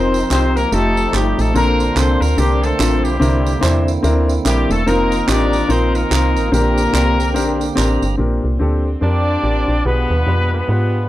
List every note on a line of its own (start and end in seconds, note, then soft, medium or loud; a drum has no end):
0.00 0.24 F1 loud
0.00 0.70 F3 medium
0.00 0.15 C4 medium
0.00 0.30 C4 medium
0.00 0.70 C4 medium
0.00 0.15 D#4 medium
0.00 0.52 D#4 medium
0.00 0.70 D#4 medium
0.00 0.16 F4 medium
0.00 0.16 A#4 loud
0.00 0.70 A#4 medium
0.00 0.30 C5 loud
0.14 tambourine medium
0.30 0.66 C2 medium
0.30 0.57 C4 medium
0.30 0.54 C4 medium
0.30 0.57 D#4 medium
0.30 0.57 F4 medium
0.30 0.58 G4 medium
0.30 0.54 C5 loud
0.30 clap medium
0.30 tambourine medium
0.55 0.72 A#3 medium
0.55 0.72 A#4 loud
0.55 tambourine medium
0.71 1.07 F1 loud
0.71 1.53 F3 medium
0.71 0.98 A3 medium
0.71 1.53 A3 medium
0.71 1.14 A3 medium
0.71 1.52 C4 medium
0.71 1.53 D#4 medium
0.71 0.99 D#4 medium
0.71 1.52 D#4 medium
0.71 0.99 F4 medium
0.71 1.53 G4 medium
0.71 0.99 G4 medium
0.71 1.14 A4 medium
0.71 tambourine medium
0.97 tambourine medium
1.12 1.34 G1 medium
1.12 1.38 G3 medium
1.12 1.39 A3 medium
1.12 1.40 D#4 medium
1.12 1.40 F4 medium
1.12 1.38 G4 medium
1.12 1.40 G4 medium
1.12 clap medium
1.12 tambourine medium
1.39 1.53 A1 medium
1.39 1.55 A3 medium
1.39 1.55 A4 medium
1.39 tambourine medium
1.54 1.90 A#1 loud
1.54 2.17 A#2 medium
1.54 3.17 D3 medium
1.54 1.81 A#3 medium
1.54 3.17 A#3 medium
1.54 1.94 A#3 loud
1.54 1.81 C4 medium
1.54 3.17 C4 medium
1.54 1.82 D4 medium
1.54 2.34 D4 medium
1.54 2.34 F4 medium
1.54 1.82 A4 medium
1.54 1.94 A#4 loud
1.54 3.17 C5 medium
1.54 tambourine medium
1.80 tambourine medium
1.96 2.17 C2 loud
1.96 2.23 A#3 medium
1.96 2.23 C4 medium
1.96 2.21 C4 medium
1.96 2.23 D4 medium
1.96 2.24 A4 medium
1.96 2.21 C5 loud
1.96 clap medium
1.96 tambourine medium
2.21 2.35 D2 medium
2.21 2.38 A#3 medium
2.21 2.38 A#4 medium
2.21 tambourine medium
2.37 2.73 C2 loud
2.37 2.63 G3 medium
2.37 2.64 A#3 medium
2.37 2.65 C4 medium
2.37 2.62 C4 medium
2.37 2.62 D4 medium
2.37 2.65 D4 medium
2.37 2.63 G4 medium
2.37 2.65 A#4 medium
2.37 tambourine medium
2.62 3.04 A3 medium
2.62 3.17 C4 medium
2.62 3.17 D4 medium
2.62 3.04 A4 medium
2.62 tambourine medium
2.78 3.06 A1 loud
2.78 3.05 A#3 medium
2.78 3.06 C4 medium
2.78 3.06 D4 medium
2.78 3.06 F4 medium
2.78 clap medium
2.78 tambourine medium
3.04 3.19 B1 medium
3.04 3.87 G3 medium
3.04 3.83 A#3 medium
3.04 3.83 E4 medium
3.04 3.87 G4 medium
3.04 tambourine medium
3.20 3.56 C2 loud
3.20 3.83 C3 medium
3.20 4.84 D3 medium
3.20 4.84 A#3 medium
3.20 3.47 C4 medium
3.20 4.84 C4 medium
3.20 3.47 D4 medium
3.20 3.47 E4 medium
3.20 4.84 E4 medium
3.20 3.48 A#4 loud
3.20 tambourine medium
3.46 tambourine medium
3.61 3.98 E2 medium
3.61 3.88 C4 medium
3.61 3.88 D4 medium
3.61 3.89 E4 medium
3.61 3.89 C5 loud
3.61 clap medium
3.61 tambourine medium
3.88 tambourine medium
4.03 4.39 D2 loud
4.03 4.30 C4 medium
4.03 4.30 D4 medium
4.03 4.30 E4 medium
4.03 4.31 A#4 loud
4.03 tambourine medium
4.29 tambourine medium
4.45 4.66 A#1 loud
4.45 4.68 G3 medium
4.45 4.72 C4 medium
4.45 4.72 D4 medium
4.45 4.72 E4 medium
4.45 4.68 G4 medium
4.45 4.73 A#4 medium
4.45 clap medium
4.45 tambourine medium
4.70 4.84 E1 loud
4.70 4.87 A3 medium
4.70 4.87 A4 medium
4.70 tambourine medium
4.86 5.22 F1 loud
4.86 6.50 D#3 medium
4.86 6.49 A#3 medium
4.86 5.28 A#3 loud
4.86 5.13 C4 medium
4.86 6.49 C4 medium
4.86 5.13 D#4 medium
4.86 5.66 D#4 medium
4.86 4.93 D#4 medium
4.86 5.14 F4 medium
4.86 5.28 A#4 loud
4.86 5.14 A#4 loud
4.86 tambourine medium
4.93 6.52 F4 medium
5.12 tambourine medium
5.27 5.63 A1 medium
5.27 5.54 C4 medium
5.27 5.70 D4 loud
5.27 5.55 D#4 medium
5.27 5.55 F4 medium
5.27 5.55 G4 medium
5.27 5.95 A#4 medium
5.27 5.70 D5 loud
5.27 clap medium
5.27 tambourine medium
5.53 tambourine medium
5.68 6.05 A#1 loud
5.68 5.96 C4 medium
5.68 5.95 C4 medium
5.68 5.96 D#4 medium
5.68 5.94 D#4 medium
5.68 5.96 F4 medium
5.68 5.97 A#4 medium
5.68 5.95 C5 loud
5.68 tambourine medium
5.95 6.52 A#3 medium
5.95 6.49 D#4 medium
5.95 6.52 A#4 loud
5.95 tambourine medium
6.10 6.38 C2 loud
6.10 6.37 C4 medium
6.10 6.38 D#4 medium
6.10 6.38 F4 medium
6.10 6.38 A#4 medium
6.10 clap medium
6.10 tambourine medium
6.36 6.50 A1 medium
6.36 tambourine medium
6.52 6.88 A#1 loud
6.52 7.15 A#2 medium
6.52 8.16 D3 medium
6.52 7.73 A#3 medium
6.52 8.16 A#3 medium
6.52 6.79 C4 medium
6.52 8.16 C4 medium
6.52 6.79 D4 medium
6.52 7.73 D4 medium
6.52 6.79 G4 medium
6.52 7.73 G4 medium
6.52 8.16 G4 medium
6.52 6.79 A#4 loud
6.52 7.73 A#4 loud
6.52 tambourine medium
6.78 tambourine medium
6.93 7.37 C2 medium
6.93 7.20 C4 medium
6.93 7.20 D4 medium
6.93 7.21 G4 medium
6.93 7.21 C5 medium
6.93 clap medium
6.93 tambourine medium
7.20 tambourine medium
7.34 7.71 A#1 loud
7.34 7.61 C4 medium
7.34 7.62 D4 medium
7.34 7.62 G4 medium
7.34 7.62 A#4 loud
7.34 tambourine medium
7.61 tambourine medium
7.75 7.98 A1 loud
7.75 8.03 C4 medium
7.75 8.03 D4 medium
7.75 8.04 G4 medium
7.75 8.04 A#4 medium
7.75 8.16 A#5 medium
7.75 clap medium
7.75 tambourine medium
8.02 8.16 G1 medium
8.02 tambourine medium
8.17 8.40 A#1 loud
8.17 8.81 A#2 medium
8.17 9.83 D3 medium
8.17 11.09 G3 medium
8.17 9.83 A#3 medium
8.17 8.45 C4 medium
8.17 9.83 C4 medium
8.17 8.45 D4 medium
8.17 8.45 G4 medium
8.17 8.46 A#4 medium
8.44 8.58 C2 medium
8.59 8.96 D2 medium
8.59 8.86 C4 medium
8.59 8.87 D4 medium
8.59 8.87 G4 medium
8.59 8.87 A4 medium
9.01 9.37 F2 medium
9.01 9.28 C4 medium
9.01 9.28 D4 medium
9.01 9.88 D4 medium
9.01 9.81 D4 medium
9.01 9.82 F4 medium
9.01 9.29 G4 medium
9.01 9.81 G4 medium
9.01 9.29 A#4 medium
9.01 9.81 D5 medium
9.43 9.65 A1 medium
9.43 9.70 C4 medium
9.43 9.70 D4 medium
9.43 9.70 G4 medium
9.43 9.71 A#4 medium
9.68 9.82 A#1 medium
9.84 10.06 B1 medium
9.84 10.48 B2 medium
9.84 11.09 F3 medium
9.84 11.09 G#3 medium
9.84 11.09 B3 medium
9.84 10.12 B3 medium
9.84 10.52 B3 medium
9.84 10.68 B3 medium
9.84 10.65 D4 medium
9.84 10.12 F4 medium
9.84 10.65 F4 medium
9.84 10.12 G4 medium
9.84 10.12 G#4 medium
9.84 10.68 B4 medium
10.10 10.24 D#2 medium
10.26 10.62 F2 medium
10.26 10.53 B3 medium
10.26 10.53 F4 medium
10.26 10.54 G4 medium
10.26 10.54 B4 medium
10.53 11.09 B3 medium
10.68 11.09 G#2 medium
10.68 10.95 B3 medium
10.68 11.09 B3 medium
10.68 11.09 D4 soft
10.68 10.95 F4 medium
10.68 11.09 F4 soft
10.68 10.95 G4 medium
10.68 10.96 B4 medium
10.68 11.09 B4 medium